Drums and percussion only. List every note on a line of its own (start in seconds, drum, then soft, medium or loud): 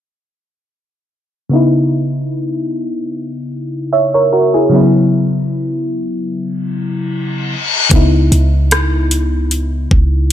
7.91 kick loud
7.91 closed hi-hat medium
8.32 closed hi-hat medium
8.71 cross-stick loud
8.71 closed hi-hat medium
9.11 closed hi-hat medium
9.51 closed hi-hat medium
9.91 kick medium